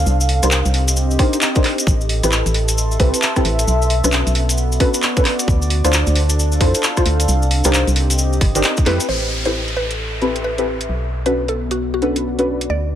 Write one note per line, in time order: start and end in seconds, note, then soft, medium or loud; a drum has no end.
0.00 0.79 A4 medium
0.00 0.80 F5 medium
0.06 0.41 C2 loud
0.06 2.60 C4 medium
0.06 cabasa medium
0.21 cabasa soft
0.29 open hi-hat medium
0.39 0.63 C2 medium
0.39 2.60 G4 medium
0.39 cross-stick soft
0.39 closed hi-hat medium
0.39 cabasa medium
0.43 0.50 D4 medium
0.43 0.50 D#4 medium
0.43 0.50 G4 medium
0.43 0.50 A#4 medium
0.43 0.50 C5 medium
0.51 1.87 D#5 medium
0.51 clap loud
0.51 cabasa medium
0.65 1.18 C2 medium
0.65 closed hi-hat soft
0.65 cabasa soft
0.74 open hi-hat medium
0.88 closed hi-hat medium
0.88 cabasa medium
0.96 cabasa medium
1.11 cabasa soft
1.19 1.36 D4 medium
1.19 1.36 D#4 medium
1.19 1.36 G4 medium
1.19 1.36 A#4 medium
1.19 1.36 C5 loud
1.19 kick loud
1.19 cross-stick soft
1.19 open hi-hat loud
1.33 closed hi-hat medium
1.33 cabasa medium
1.41 clap loud
1.41 cabasa medium
1.55 1.63 D4 medium
1.55 1.63 D#4 medium
1.55 1.63 G4 medium
1.55 1.63 A#4 medium
1.55 1.63 C5 medium
1.55 kick loud
1.55 closed hi-hat soft
1.55 cabasa soft
1.64 cross-stick soft
1.64 clap medium
1.64 open hi-hat medium
1.78 closed hi-hat medium
1.78 cabasa medium
1.87 2.21 A1 loud
1.87 4.41 A4 medium
1.87 kick loud
1.87 cabasa medium
2.01 cabasa soft
2.09 open hi-hat medium
2.20 2.43 A1 medium
2.20 2.31 C4 medium
2.20 2.31 E4 medium
2.20 2.31 G4 medium
2.20 2.31 A4 medium
2.20 2.31 B4 medium
2.20 4.41 E5 medium
2.20 cross-stick soft
2.20 closed hi-hat medium
2.20 cabasa medium
2.32 clap loud
2.32 cabasa medium
2.46 2.98 A1 medium
2.46 closed hi-hat soft
2.46 cabasa soft
2.54 3.67 C6 medium
2.54 open hi-hat medium
2.68 closed hi-hat medium
2.68 cabasa medium
2.78 cabasa medium
2.92 cabasa soft
3.00 3.12 C2 loud
3.00 3.17 C4 medium
3.00 3.17 E4 medium
3.00 3.17 G4 medium
3.00 3.17 A4 medium
3.00 3.17 B4 loud
3.00 kick loud
3.00 open hi-hat medium
3.14 closed hi-hat medium
3.14 cabasa medium
3.22 clap loud
3.22 cabasa medium
3.36 3.44 C4 medium
3.36 3.44 E4 medium
3.36 3.44 G4 medium
3.36 3.44 A4 medium
3.36 3.44 B4 medium
3.36 kick medium
3.36 cross-stick medium
3.36 closed hi-hat soft
3.36 cabasa soft
3.45 3.66 A1 loud
3.45 open hi-hat medium
3.59 closed hi-hat medium
3.59 cabasa medium
3.67 4.02 B1 loud
3.67 6.21 B3 medium
3.67 cabasa medium
3.82 cabasa soft
3.90 open hi-hat loud
4.04 4.23 B1 medium
4.04 4.11 C#4 medium
4.04 4.11 D4 medium
4.04 4.11 F#4 medium
4.04 4.11 A4 medium
4.04 4.11 B4 medium
4.04 cross-stick soft
4.04 closed hi-hat medium
4.04 cabasa medium
4.12 clap loud
4.12 cabasa medium
4.27 4.79 B1 medium
4.27 closed hi-hat soft
4.27 cabasa soft
4.35 open hi-hat medium
4.43 5.48 F#4 medium
4.49 6.21 D5 medium
4.49 closed hi-hat medium
4.49 cabasa medium
4.58 cabasa medium
4.72 cabasa soft
4.80 4.97 C#4 medium
4.80 4.97 D4 medium
4.80 4.97 F#4 medium
4.80 4.97 A4 medium
4.80 4.97 B4 medium
4.80 kick loud
4.80 cross-stick soft
4.80 open hi-hat loud
4.94 closed hi-hat medium
4.94 cabasa medium
5.03 clap loud
5.03 cabasa medium
5.17 5.24 C#4 medium
5.17 5.24 D4 medium
5.17 5.24 F#4 medium
5.17 5.24 A4 medium
5.17 5.24 B4 medium
5.17 kick loud
5.17 closed hi-hat medium
5.17 cabasa soft
5.25 cross-stick soft
5.25 clap medium
5.25 open hi-hat medium
5.39 closed hi-hat medium
5.39 cabasa medium
5.48 5.82 D2 loud
5.48 7.28 D4 medium
5.48 kick loud
5.48 cabasa medium
5.62 cabasa soft
5.70 open hi-hat loud
5.84 6.04 D2 medium
5.84 5.92 D4 medium
5.84 5.92 E4 medium
5.84 5.92 F4 medium
5.84 5.92 A4 medium
5.84 8.02 A4 medium
5.84 5.92 C5 medium
5.84 cross-stick soft
5.84 closed hi-hat medium
5.84 cabasa medium
5.93 clap loud
5.93 cabasa medium
6.07 6.59 D2 medium
6.07 closed hi-hat soft
6.07 cabasa soft
6.15 open hi-hat medium
6.30 7.88 F5 medium
6.30 closed hi-hat medium
6.30 cabasa medium
6.39 cabasa medium
6.52 cabasa soft
6.61 6.73 F2 loud
6.61 6.78 D4 medium
6.61 6.78 E4 medium
6.61 6.78 F4 medium
6.61 6.78 A4 medium
6.61 6.78 C5 loud
6.61 kick loud
6.61 open hi-hat loud
6.75 closed hi-hat medium
6.75 cabasa medium
6.83 clap loud
6.83 cabasa medium
6.97 7.04 D4 medium
6.97 7.04 E4 medium
6.97 7.04 F4 medium
6.97 7.04 A4 medium
6.97 7.04 C5 medium
6.97 kick medium
6.97 cross-stick medium
6.97 closed hi-hat medium
6.97 cabasa soft
7.06 7.26 D2 loud
7.06 open hi-hat medium
7.20 closed hi-hat medium
7.20 cabasa medium
7.28 7.62 C2 loud
7.28 9.70 C4 medium
7.28 cabasa medium
7.42 cabasa soft
7.51 9.82 G4 medium
7.51 open hi-hat loud
7.64 7.84 C2 medium
7.64 7.72 D4 medium
7.64 7.72 D#4 medium
7.64 7.72 G4 medium
7.64 7.72 A#4 medium
7.64 7.72 C5 medium
7.64 cross-stick medium
7.64 closed hi-hat medium
7.64 cabasa medium
7.72 9.09 D#5 medium
7.72 clap loud
7.72 cabasa medium
7.87 8.40 C2 medium
7.87 closed hi-hat soft
7.87 cabasa soft
7.96 open hi-hat medium
8.10 closed hi-hat medium
8.10 cabasa medium
8.18 cabasa medium
8.33 cabasa soft
8.41 8.54 G1 loud
8.41 kick loud
8.41 cross-stick soft
8.41 open hi-hat loud
8.55 8.63 G1 medium
8.55 8.62 D4 medium
8.55 8.62 D#4 medium
8.55 8.62 G4 medium
8.55 8.62 A#4 medium
8.55 8.62 C5 medium
8.55 closed hi-hat medium
8.55 cabasa medium
8.63 clap loud
8.63 cabasa medium
8.77 kick loud
8.77 closed hi-hat medium
8.77 cabasa soft
8.86 8.99 F2 loud
8.86 9.31 C4 medium
8.86 9.31 E4 medium
8.86 9.31 G4 medium
8.86 9.31 A4 medium
8.86 9.31 B4 loud
8.86 snare medium
8.86 open hi-hat medium
9.00 closed hi-hat medium
9.00 cabasa medium
9.09 10.88 A1 medium
9.09 11.62 A4 medium
9.09 9.26 C5 medium
9.09 crash medium
9.09 downlifter medium
9.45 9.53 C4 medium
9.45 9.53 E4 medium
9.45 9.53 G4 medium
9.45 9.53 A4 medium
9.45 9.53 B4 medium
9.45 9.59 C5 medium
9.45 closed hi-hat medium
9.68 closed hi-hat soft
9.75 9.93 B4 medium
9.75 11.63 E5 medium
9.75 10.89 C6 medium
9.91 closed hi-hat medium
10.22 10.38 C4 medium
10.22 10.38 E4 medium
10.22 10.38 G4 medium
10.22 10.38 A4 medium
10.22 10.38 B4 medium
10.22 closed hi-hat soft
10.36 closed hi-hat medium
10.44 10.61 B4 medium
10.58 10.65 C4 medium
10.58 10.65 E4 medium
10.58 10.65 G4 medium
10.58 10.65 A4 medium
10.58 10.65 B4 medium
10.58 closed hi-hat soft
10.81 closed hi-hat medium
10.89 12.68 B1 medium
10.89 12.95 B3 medium
11.26 11.33 C#4 medium
11.26 11.33 D4 medium
11.26 11.33 F#4 medium
11.26 11.33 A4 medium
11.26 11.33 B4 medium
11.26 11.34 B4 medium
11.26 closed hi-hat medium
11.48 12.70 F#4 medium
11.48 11.56 A4 medium
11.48 closed hi-hat soft
11.54 12.95 D5 medium
11.71 11.79 F#4 medium
11.71 closed hi-hat medium
11.94 12.63 F#4 medium
12.02 12.19 C#4 medium
12.02 12.19 D4 medium
12.02 12.19 F#4 medium
12.02 12.19 A4 medium
12.02 12.19 B4 medium
12.02 closed hi-hat soft
12.16 closed hi-hat medium
12.39 12.46 C#4 medium
12.39 12.46 D4 medium
12.39 12.46 F#4 medium
12.39 12.46 A4 medium
12.39 12.46 B4 medium
12.39 closed hi-hat soft
12.61 closed hi-hat medium
12.69 12.95 D2 medium
12.69 12.95 D4 medium
12.69 12.87 D5 medium